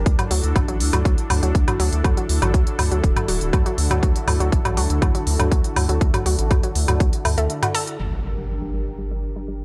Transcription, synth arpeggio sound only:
0.19 0.30 F#3 medium
0.31 0.41 F#3 medium
0.56 0.67 F#3 medium
0.68 0.78 F#3 medium
0.93 1.04 F#3 medium
1.05 1.15 F#3 medium
1.30 1.42 F#3 medium
1.43 1.52 F#3 medium
1.68 1.78 F#3 medium
1.80 1.89 F#3 medium
2.04 2.16 F#3 medium
2.17 2.26 F#3 medium
2.42 2.53 F#3 medium
2.54 2.64 F#3 medium
2.79 2.90 F#3 medium
2.92 3.01 F#3 medium
3.16 3.27 F#3 medium
3.28 3.38 F#3 medium
3.53 3.65 F#3 medium
3.66 3.75 F#3 medium
3.91 4.02 F#3 medium
4.03 4.13 F#3 medium
4.28 4.39 F#3 medium
4.40 4.49 F#3 medium
4.65 4.76 F#3 medium
4.77 4.87 F#3 medium
5.02 5.14 F#3 medium
5.15 5.24 F#3 medium
5.39 5.50 F#3 medium
5.52 5.61 F#3 medium
5.76 5.88 F#3 medium
5.89 5.98 F#3 medium
6.14 6.25 F#3 medium
6.26 6.36 F#3 medium
6.51 6.62 F#3 medium
6.63 6.73 F#3 medium
6.88 6.99 F#3 medium
7.00 7.10 F#3 medium
7.25 7.35 A3 medium
7.38 7.47 A3 loud
7.62 7.68 F#4 medium
7.75 7.80 A4 loud
7.99 8.09 G3 medium
8.24 8.36 G3 medium
8.37 8.46 G3 medium
8.62 8.73 G3 medium
8.74 8.84 G3 medium
8.99 9.10 G3 medium
9.11 9.21 G3 medium
9.36 9.47 G3 medium
9.48 9.58 G3 medium

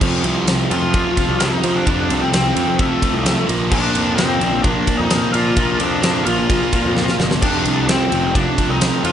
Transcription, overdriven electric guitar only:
0.01 0.23 F2 medium
0.01 0.23 C3 medium
0.01 0.24 F3 medium
0.24 0.47 F2 medium
0.24 0.46 C3 medium
0.24 0.48 F3 medium
0.47 0.69 F2 medium
0.47 0.70 C3 medium
0.47 0.71 F3 medium
0.71 0.92 F2 medium
0.71 0.93 C3 loud
0.71 0.94 F3 medium
0.94 1.15 F2 medium
0.94 1.16 C3 medium
0.94 1.17 F3 medium
1.17 1.38 F2 medium
1.17 1.39 C3 medium
1.17 1.40 F3 loud
1.39 1.62 F2 medium
1.39 1.63 C3 loud
1.39 1.64 F3 loud
1.63 1.85 F2 medium
1.63 1.85 C3 medium
1.63 1.87 F3 loud
1.86 2.08 F2 medium
1.86 2.09 C3 loud
1.86 2.10 F3 loud
2.09 2.31 F2 medium
2.09 2.32 C3 medium
2.09 2.33 F3 medium
2.33 2.54 F2 medium
2.33 2.55 C3 medium
2.33 2.56 F3 medium
2.55 2.78 F2 loud
2.55 2.78 C3 loud
2.55 2.79 F3 loud
2.79 3.00 F2 medium
2.79 3.01 C3 medium
2.79 3.02 F3 medium
3.01 3.23 F2 medium
3.01 3.24 C3 medium
3.01 3.25 F3 medium
3.24 3.47 F2 loud
3.24 3.47 C3 medium
3.24 3.48 F3 loud
3.47 3.71 A#2 loud
3.47 3.71 F3 loud
3.47 3.72 A#3 loud
3.71 3.94 A#2 medium
3.71 3.94 F3 loud
3.71 3.94 A#3 loud
3.94 4.16 A#2 medium
3.94 4.17 F3 medium
3.94 4.18 A#3 medium
4.17 4.40 A#2 medium
4.17 4.40 F3 medium
4.17 4.41 A#3 medium
4.40 4.62 A#2 medium
4.40 4.63 F3 medium
4.40 4.63 A#3 medium
4.63 4.85 A#2 medium
4.63 4.87 F3 medium
4.63 4.86 A#3 medium
4.86 5.08 A#2 medium
4.86 5.09 F3 medium
4.86 5.09 A#3 medium
5.09 5.31 A#2 medium
5.09 5.33 F3 loud
5.09 5.32 A#3 loud
5.32 5.55 A#2 medium
5.32 5.56 F3 medium
5.32 5.56 A#3 medium
5.56 5.79 A#2 medium
5.56 5.80 F3 medium
5.56 5.80 A#3 loud
5.80 6.01 A#2 medium
5.80 6.02 F3 medium
5.80 6.02 A#3 medium
6.02 6.24 A#2 medium
6.02 6.26 F3 medium
6.02 6.25 A#3 medium
6.26 6.48 A#2 medium
6.26 6.49 F3 medium
6.26 6.49 A#3 loud
6.49 6.71 A#2 medium
6.49 6.72 F3 medium
6.49 6.72 A#3 medium
6.72 6.94 A#2 medium
6.72 6.96 F3 medium
6.72 6.95 A#3 medium
6.95 7.17 A#2 medium
6.95 7.18 F3 loud
6.95 7.18 A#3 loud
7.18 7.40 A#2 medium
7.18 7.42 F3 medium
7.18 7.41 A#3 medium
7.42 7.65 F2 medium
7.42 7.65 C3 medium
7.42 7.66 F3 loud
7.65 7.87 F2 medium
7.65 7.87 C3 medium
7.65 7.89 F3 medium
7.88 8.10 F2 medium
7.88 8.10 C3 medium
7.88 8.11 F3 medium
8.11 8.33 F2 medium
8.11 8.33 C3 loud
8.11 8.35 F3 loud
8.34 8.56 F2 medium
8.34 8.57 C3 medium
8.34 8.58 F3 medium
8.57 8.79 F2 medium
8.57 8.79 C3 medium
8.57 8.81 F3 loud
8.80 9.02 F2 loud
8.80 9.02 C3 loud
8.80 9.04 F3 loud
9.03 9.12 F2 medium
9.03 9.12 C3 loud
9.03 9.12 F3 medium

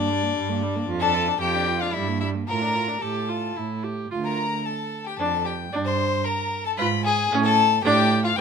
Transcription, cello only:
0.00 0.29 G2 medium
0.36 0.82 G2 loud
0.87 1.34 F2 loud
1.40 1.87 F2 loud
1.94 2.41 G2 medium
2.47 2.95 A2 medium
3.01 3.50 A2 medium
3.56 4.04 A2 medium
4.11 4.57 D2 medium
5.20 5.64 F2 medium
5.73 6.17 G2 medium
6.78 7.23 G#2 loud
7.32 7.76 A2 loud
7.84 8.29 A2 loud
8.38 8.41 A2 loud

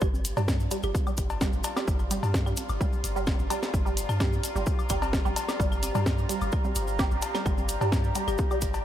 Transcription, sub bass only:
0.02 0.32 G1 loud
0.37 0.67 G2 medium
0.83 0.92 G1 loud
1.18 1.49 G1 loud
1.53 1.62 G1 loud
1.88 2.18 G1 loud
2.23 2.53 G2 medium
2.70 2.78 G1 loud
3.04 3.35 G1 medium
3.39 3.48 G1 loud
3.74 4.04 G1 loud
4.09 4.39 G2 medium
4.56 4.64 G1 loud
4.90 5.21 G1 medium
5.25 5.34 G1 loud
5.60 5.90 G1 loud
5.95 6.25 G2 medium
6.42 6.50 G1 loud
6.76 7.07 G1 loud
7.11 7.20 G1 loud
7.46 7.76 G1 loud
7.81 8.11 G2 medium
8.28 8.36 G1 loud
8.62 8.85 G1 loud

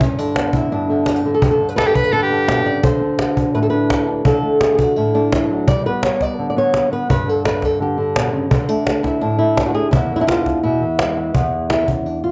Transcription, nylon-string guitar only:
0.00 0.71 G2 medium
0.00 0.18 C#4 medium
0.18 0.89 D3 medium
0.18 0.71 D4 loud
0.37 1.41 B3 soft
0.54 0.88 E4 medium
0.71 1.40 G2 medium
0.71 1.25 D4 medium
0.90 1.24 D3 medium
0.90 1.07 E4 medium
1.07 1.16 F#4 medium
1.16 1.34 G4 medium
1.25 1.59 D3 medium
1.34 1.43 A4 medium
1.42 2.82 G2 medium
1.42 1.50 G4 loud
1.51 1.69 A4 medium
1.60 2.12 D3 medium
1.69 1.75 B4 loud
1.76 1.86 B4 loud
1.86 2.04 A4 loud
2.04 2.12 B4 loud
2.13 2.29 D3 medium
2.13 2.83 B4 loud
2.30 2.82 D3 medium
2.48 2.65 B2 medium
2.66 2.84 C#3 medium
2.66 2.84 D5 loud
2.83 4.24 D3 medium
2.83 3.54 C5 loud
3.01 3.72 D4 medium
3.20 4.24 F#4 soft
3.54 4.24 A2 medium
3.54 3.62 B4 loud
3.63 3.69 A4 medium
3.70 4.07 D4 medium
3.70 4.26 B4 loud
4.07 4.42 D4 medium
4.25 5.32 D3 medium
4.25 4.61 A4 loud
4.43 5.13 A3 medium
4.61 4.74 G#4 medium
4.75 4.80 G#4 medium
4.80 4.96 F#4 medium
4.96 5.67 A2 medium
4.96 5.50 E4 medium
5.14 5.65 A3 medium
5.14 5.68 D4 medium
5.33 5.49 E3 medium
5.50 5.68 F#3 medium
5.68 7.08 G3 medium
5.68 5.85 D5 loud
5.86 6.55 B3 medium
5.86 6.03 B4 loud
6.05 6.22 C#5 medium
6.22 6.49 D5 loud
6.39 7.07 D3 medium
6.50 6.57 D5 medium
6.56 6.91 B3 medium
6.56 6.92 C#5 loud
6.92 7.07 B3 medium
6.92 7.09 B4 medium
7.09 8.49 G2 medium
7.09 7.29 B4 loud
7.27 7.79 D3 medium
7.27 7.46 A4 loud
7.46 7.65 B4 medium
7.65 7.81 A4 medium
7.80 7.96 D3 medium
7.80 8.52 G4 medium
7.98 8.49 D3 medium
8.16 8.33 B2 medium
8.33 8.51 C#3 medium
8.50 9.93 D3 medium
8.50 8.69 C4 medium
8.69 8.86 A3 medium
8.69 9.20 D4 loud
8.87 9.38 A3 soft
9.03 9.37 E4 medium
9.21 9.93 A2 medium
9.21 9.57 D4 loud
9.39 9.74 A3 medium
9.39 9.66 E4 medium
9.59 9.92 D4 soft
9.66 9.74 F#4 medium
9.75 9.91 A3 medium
9.75 9.91 G#4 loud
9.91 11.33 E2 medium
9.91 10.15 E4 loud
10.11 10.80 E3 medium
10.16 10.58 D4 medium
10.16 10.20 E4 loud
10.21 10.27 E4 medium
10.27 10.63 F4 loud
10.63 10.82 B2 medium
10.63 11.35 E4 medium
10.82 11.15 E3 medium
11.01 11.34 G#3 soft
11.17 11.33 E3 medium
11.34 12.31 E2 medium
11.34 11.88 B3 soft
11.34 11.69 G#4 soft
11.70 11.88 E4 medium
11.88 12.06 C#4 medium
12.06 12.23 D4 medium
12.24 12.31 F4 medium

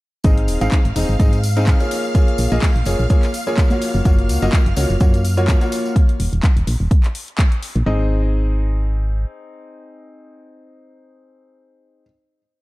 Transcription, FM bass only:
0.24 0.50 G#1 medium
0.48 0.57 D#1 medium
0.61 0.69 G#1 medium
0.85 0.93 G#1 medium
0.96 1.05 D#1 loud
1.09 1.16 G#1 medium
1.20 1.74 G#2 medium
2.39 2.48 A#1 medium
2.52 2.59 A#1 medium
2.76 2.83 A#1 medium
2.86 2.95 F1 loud
2.99 3.07 A#1 medium
3.94 4.02 F#1 medium
4.05 4.31 F#1 medium
4.29 4.38 C#2 medium
4.42 4.50 F#1 medium
4.66 4.74 F#1 medium
4.77 4.86 C#2 loud
4.90 4.97 F#1 medium
5.01 5.55 F#2 medium
6.20 6.29 D#1 medium
6.33 6.40 D#1 medium
6.57 6.64 D#1 medium
6.67 6.76 A#1 loud
6.80 6.88 D#1 medium
7.76 7.83 A#1 medium
7.86 9.25 G#1 medium

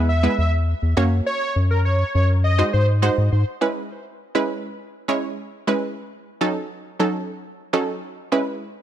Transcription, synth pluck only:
0.23 0.58 G#3 medium
0.23 0.58 B3 medium
0.23 0.58 E4 medium
0.23 0.58 B4 medium
0.97 1.91 A#3 medium
0.97 1.91 C#4 medium
0.97 1.91 F#4 medium
0.97 1.91 C#5 loud
2.58 2.79 G#3 medium
2.58 2.79 D#4 medium
2.58 2.79 F#4 medium
2.58 2.79 C5 medium
3.02 3.30 G#3 loud
3.02 3.30 D#4 medium
3.02 3.30 F#4 medium
3.02 3.30 C5 loud
3.61 3.96 G#3 medium
3.61 3.96 C#4 medium
3.61 3.96 E4 medium
3.61 3.96 B4 medium
4.35 4.69 G#3 medium
4.35 4.69 C#4 medium
4.35 4.70 E4 medium
4.35 4.70 B4 loud
5.08 5.36 G#3 loud
5.08 5.36 C#4 medium
5.08 5.36 E4 medium
5.08 5.36 C#5 loud
5.67 5.97 G#3 medium
5.67 5.97 C#4 medium
5.67 5.97 E4 medium
5.67 5.97 B4 loud
6.41 6.68 F#3 medium
6.41 6.69 C#4 medium
6.41 6.69 D#4 medium
6.41 6.69 A4 loud
7.00 7.34 F#3 medium
7.00 7.34 C#4 medium
7.00 7.34 D#4 medium
7.00 7.34 A4 loud
7.73 8.01 F#3 medium
7.73 8.01 C#4 medium
7.73 8.01 D#4 medium
7.73 8.01 A4 loud
8.32 8.66 G#3 medium
8.32 8.66 C#4 medium
8.32 8.67 E4 medium
8.32 8.67 B4 medium

